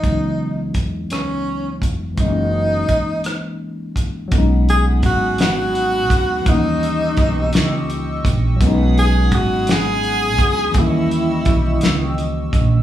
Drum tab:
HH |x-xx-x|x-xx-x|xxxxxx|xxxxxx|
SD |---r--|---r--|---o--|---o--|
BD |o-o--o|o-o--o|o-o--o|o-o--o|

HH |xxxxxx|xxxxxx|
SD |---o--|---o--|
BD |o-o--o|o-o--o|